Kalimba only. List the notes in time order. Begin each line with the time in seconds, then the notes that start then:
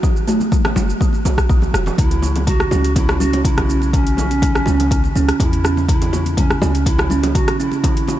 0.03 F#3
0.28 A3
0.52 F#3
0.76 F#4
1.01 F#3
1.25 F#4
1.50 F#3
1.74 F#4
1.98 C#3
2.23 E3
2.47 C#3
2.72 C#4
2.96 C#3
3.20 C#4
3.45 C#3
3.69 C#4
3.93 C#3
4.18 E3
4.42 C#3
4.67 C#4
4.91 C#3
5.16 C#4
5.40 C#3
5.64 C#4
5.89 C#3
6.13 E3
6.37 C#3
6.62 C#4
6.86 C#3
7.11 C#4
7.35 C#3
7.60 C#4
7.84 C#3
8.08 E3